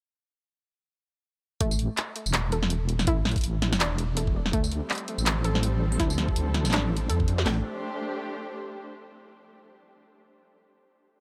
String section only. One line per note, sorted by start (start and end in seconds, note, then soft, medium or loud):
4.53 7.46 G3 medium
4.68 7.46 C4 medium
5.00 7.46 F3 medium
5.29 7.46 A4 medium
7.46 8.88 A3 medium
7.52 8.88 D4 medium
7.58 8.88 G4 medium
7.63 8.88 C5 medium